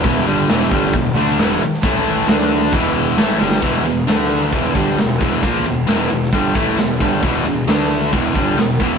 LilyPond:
<<
  \new Staff \with { instrumentName = "Distorted electric guitar" } { \clef bass \time 4/4 \key d \lydian \tempo 4 = 133 <e, b, e>8 <g, d g>8 <e, b, e>8 <g, d g>8 <e, b,>8 <d a d'>8 <e, b, e>8 r8 | <a, e a>4 <d a d'>4 <e, b, e>4 <a, e a>8 <g, d g>8 | <e, b, e>8 <e, b,>8 <d a d'>4 <e, b, e>8 <g, d g>8 <e, b,>8 <e, b, e>8 | <ais, f ais>8 <e, b,>8 <e, b, e>8 <e, b,>8 <g, d g>8 <a, e a>8 <e, b,>8 <g, d g>8 |
<e, b, e>8 <e, b,>8 <d a d'>4 <e, b, e>8 <g, d g>8 <e, b,>8 <e, b, e>8 | }
  \new Staff \with { instrumentName = "Overdriven electric guitar" } { \clef bass \time 4/4 \key d \lydian <e, b, e>8 <g, d g>8 <e, b, e>8 <g, d g>8 <e, b,>8 <d a d'>8 <e, b, e>8 r8 | <a, e a>4 <d a d'>4 <e, b, e>4 <a, e a>8 <g, d g>8 | <e, b, e>8 <e, b,>8 <d a d'>4 <e, b, e>8 <g, d g>8 <e, b,>8 <e, b, e>8 | <ais, f ais>8 <e, b,>8 <e, b, e>8 <e, b,>8 <g, d g>8 <a, e a>8 <e, b,>8 <g, d g>8 |
<e, b, e>8 <e, b,>8 <d a d'>4 <e, b, e>8 <g, d g>8 <e, b,>8 <e, b, e>8 | }
  \new Staff \with { instrumentName = "Picked electric bass" } { \clef bass \time 4/4 \key d \lydian e,,8 g,,8 e,,8 g,,8 e,,8 d,8 e,,8 r8 | a,,4 d,4 e,,4 a,,8 g,,8 | e,,8 e,,8 d,4 e,,8 g,,8 e,,8 e,,8 | ais,,8 e,,8 e,,8 e,,8 g,,8 a,,8 e,,8 g,,8 |
e,,8 e,,8 d,4 e,,8 g,,8 e,,8 e,,8 | }
  \new DrumStaff \with { instrumentName = "Drums" } \drummode { \time 4/4 <hho bd>4 <hho sn>8 bd8 <hho bd>4 <hho sn>8. sn16 | <hho bd>4 <hho sn>4 <hho bd>4 <hho sn>8 sn16 sn16 | <bd cymr>8 cymr8 <cymr sn>8 cymr16 sn16 <bd cymr>8 <bd cymr>8 <cymr sn>8 <bd cymr>8 | <bd cymr>8 cymr8 <cymr sn>8 cymr16 sn16 <bd cymr>8 <bd cymr>8 <cymr sn>8 <bd cymr>8 |
<bd cymr>8 cymr8 <cymr sn>8 cymr16 sn16 <bd cymr>8 <bd cymr>8 <cymr sn>8 <bd cymr>8 | }
>>